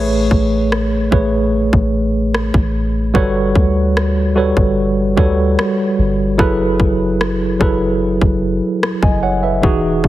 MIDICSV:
0, 0, Header, 1, 4, 480
1, 0, Start_track
1, 0, Tempo, 810811
1, 1864, Time_signature, 4, 2, 24, 8
1, 5967, End_track
2, 0, Start_track
2, 0, Title_t, "Tine electric piano"
2, 0, Program_c, 0, 4
2, 0, Note_on_c, 0, 57, 102
2, 0, Note_on_c, 0, 68, 88
2, 0, Note_on_c, 0, 71, 89
2, 0, Note_on_c, 0, 73, 107
2, 49, Control_c, 0, 64, 127
2, 525, Note_off_c, 0, 57, 0
2, 528, Note_off_c, 0, 68, 0
2, 530, Note_off_c, 0, 71, 0
2, 533, Note_off_c, 0, 73, 0
2, 656, Note_on_c, 0, 57, 76
2, 661, Note_on_c, 0, 68, 70
2, 666, Note_on_c, 0, 71, 71
2, 671, Note_on_c, 0, 73, 80
2, 1441, Note_off_c, 0, 57, 0
2, 1443, Note_off_c, 0, 68, 0
2, 1446, Note_off_c, 0, 71, 0
2, 1448, Note_off_c, 0, 73, 0
2, 1858, Note_on_c, 0, 55, 92
2, 1861, Note_on_c, 0, 66, 86
2, 1865, Note_on_c, 0, 69, 87
2, 1868, Note_on_c, 0, 71, 89
2, 1872, Control_c, 0, 64, 0
2, 1872, Note_on_c, 0, 73, 109
2, 1968, Control_c, 0, 64, 127
2, 2446, Note_off_c, 0, 55, 0
2, 2448, Note_off_c, 0, 66, 0
2, 2450, Note_off_c, 0, 69, 0
2, 2451, Note_off_c, 0, 71, 0
2, 2453, Note_off_c, 0, 73, 0
2, 2577, Note_on_c, 0, 55, 78
2, 2581, Note_on_c, 0, 66, 71
2, 2584, Note_on_c, 0, 69, 69
2, 2588, Note_on_c, 0, 71, 72
2, 2592, Note_on_c, 0, 73, 83
2, 2971, Note_off_c, 0, 55, 0
2, 2972, Note_off_c, 0, 66, 0
2, 2974, Note_off_c, 0, 69, 0
2, 2976, Note_off_c, 0, 71, 0
2, 2978, Note_off_c, 0, 73, 0
2, 3057, Note_on_c, 0, 55, 75
2, 3061, Note_on_c, 0, 66, 72
2, 3064, Note_on_c, 0, 69, 73
2, 3068, Note_on_c, 0, 71, 69
2, 3071, Note_on_c, 0, 73, 82
2, 3646, Note_off_c, 0, 55, 0
2, 3648, Note_off_c, 0, 66, 0
2, 3650, Note_off_c, 0, 69, 0
2, 3652, Note_off_c, 0, 71, 0
2, 3653, Note_off_c, 0, 73, 0
2, 3776, Note_on_c, 0, 54, 99
2, 3780, Note_on_c, 0, 64, 95
2, 3784, Note_on_c, 0, 68, 92
2, 3787, Note_on_c, 0, 69, 89
2, 3791, Control_c, 0, 64, 0
2, 3791, Note_on_c, 0, 71, 116
2, 3876, Control_c, 0, 64, 127
2, 4366, Note_off_c, 0, 54, 0
2, 4367, Note_off_c, 0, 64, 0
2, 4369, Note_off_c, 0, 68, 0
2, 4371, Note_off_c, 0, 69, 0
2, 4373, Note_off_c, 0, 71, 0
2, 4496, Note_on_c, 0, 54, 75
2, 4500, Note_on_c, 0, 64, 74
2, 4503, Note_on_c, 0, 68, 69
2, 4506, Note_on_c, 0, 69, 69
2, 4510, Note_on_c, 0, 71, 89
2, 5227, Note_off_c, 0, 71, 0
2, 5281, Note_off_c, 0, 54, 0
2, 5282, Note_off_c, 0, 64, 0
2, 5284, Note_off_c, 0, 68, 0
2, 5286, Note_off_c, 0, 69, 0
2, 5344, Note_on_c, 0, 80, 65
2, 5347, Note_on_c, 0, 75, 54
2, 5458, Note_off_c, 0, 80, 0
2, 5459, Note_off_c, 0, 75, 0
2, 5464, Note_on_c, 0, 78, 68
2, 5467, Note_on_c, 0, 73, 59
2, 5578, Note_off_c, 0, 78, 0
2, 5579, Note_off_c, 0, 73, 0
2, 5583, Note_on_c, 0, 76, 61
2, 5587, Note_on_c, 0, 71, 52
2, 5695, Note_on_c, 0, 52, 98
2, 5700, Note_on_c, 0, 63, 87
2, 5705, Note_on_c, 0, 66, 87
2, 5710, Note_on_c, 0, 68, 106
2, 5712, Control_c, 0, 64, 0
2, 5800, Control_c, 0, 64, 127
2, 5811, Note_off_c, 0, 76, 0
2, 5813, Note_off_c, 0, 71, 0
2, 5967, Note_off_c, 0, 52, 0
2, 5967, Note_off_c, 0, 63, 0
2, 5967, Note_off_c, 0, 66, 0
2, 5967, Note_off_c, 0, 68, 0
2, 5967, End_track
3, 0, Start_track
3, 0, Title_t, "808-style bass"
3, 0, Program_c, 1, 38
3, 0, Note_on_c, 1, 33, 108
3, 174, Note_off_c, 1, 33, 0
3, 185, Note_on_c, 1, 33, 93
3, 645, Note_off_c, 1, 33, 0
3, 664, Note_on_c, 1, 33, 93
3, 1009, Note_off_c, 1, 33, 0
3, 1024, Note_on_c, 1, 33, 94
3, 1485, Note_off_c, 1, 33, 0
3, 1505, Note_on_c, 1, 33, 98
3, 1850, Note_off_c, 1, 33, 0
3, 1864, Note_on_c, 1, 31, 107
3, 2094, Note_off_c, 1, 31, 0
3, 2105, Note_on_c, 1, 38, 97
3, 2681, Note_off_c, 1, 38, 0
3, 2704, Note_on_c, 1, 31, 98
3, 3049, Note_off_c, 1, 31, 0
3, 3064, Note_on_c, 1, 38, 97
3, 3294, Note_off_c, 1, 38, 0
3, 3545, Note_on_c, 1, 31, 101
3, 3775, Note_off_c, 1, 31, 0
3, 3783, Note_on_c, 1, 30, 107
3, 4014, Note_off_c, 1, 30, 0
3, 4023, Note_on_c, 1, 30, 91
3, 4484, Note_off_c, 1, 30, 0
3, 4503, Note_on_c, 1, 30, 96
3, 4849, Note_off_c, 1, 30, 0
3, 4863, Note_on_c, 1, 30, 98
3, 5094, Note_off_c, 1, 30, 0
3, 5343, Note_on_c, 1, 30, 98
3, 5689, Note_off_c, 1, 30, 0
3, 5704, Note_on_c, 1, 28, 107
3, 5934, Note_off_c, 1, 28, 0
3, 5944, Note_on_c, 1, 28, 91
3, 5967, Note_off_c, 1, 28, 0
3, 5967, End_track
4, 0, Start_track
4, 0, Title_t, "Drums"
4, 184, Note_on_c, 9, 36, 79
4, 243, Note_off_c, 9, 36, 0
4, 428, Note_on_c, 9, 37, 102
4, 487, Note_off_c, 9, 37, 0
4, 664, Note_on_c, 9, 36, 95
4, 723, Note_off_c, 9, 36, 0
4, 1024, Note_on_c, 9, 36, 84
4, 1083, Note_off_c, 9, 36, 0
4, 1388, Note_on_c, 9, 37, 101
4, 1448, Note_off_c, 9, 37, 0
4, 1504, Note_on_c, 9, 36, 94
4, 1564, Note_off_c, 9, 36, 0
4, 1864, Note_on_c, 9, 36, 111
4, 1924, Note_off_c, 9, 36, 0
4, 2104, Note_on_c, 9, 36, 77
4, 2164, Note_off_c, 9, 36, 0
4, 2350, Note_on_c, 9, 37, 99
4, 2409, Note_off_c, 9, 37, 0
4, 2704, Note_on_c, 9, 36, 84
4, 2763, Note_off_c, 9, 36, 0
4, 3063, Note_on_c, 9, 36, 85
4, 3123, Note_off_c, 9, 36, 0
4, 3308, Note_on_c, 9, 37, 108
4, 3368, Note_off_c, 9, 37, 0
4, 3783, Note_on_c, 9, 36, 108
4, 3843, Note_off_c, 9, 36, 0
4, 4023, Note_on_c, 9, 36, 77
4, 4083, Note_off_c, 9, 36, 0
4, 4268, Note_on_c, 9, 37, 97
4, 4327, Note_off_c, 9, 37, 0
4, 4503, Note_on_c, 9, 36, 97
4, 4562, Note_off_c, 9, 36, 0
4, 4863, Note_on_c, 9, 36, 76
4, 4922, Note_off_c, 9, 36, 0
4, 5228, Note_on_c, 9, 37, 102
4, 5287, Note_off_c, 9, 37, 0
4, 5343, Note_on_c, 9, 36, 94
4, 5402, Note_off_c, 9, 36, 0
4, 5703, Note_on_c, 9, 36, 110
4, 5762, Note_off_c, 9, 36, 0
4, 5943, Note_on_c, 9, 36, 75
4, 5967, Note_off_c, 9, 36, 0
4, 5967, End_track
0, 0, End_of_file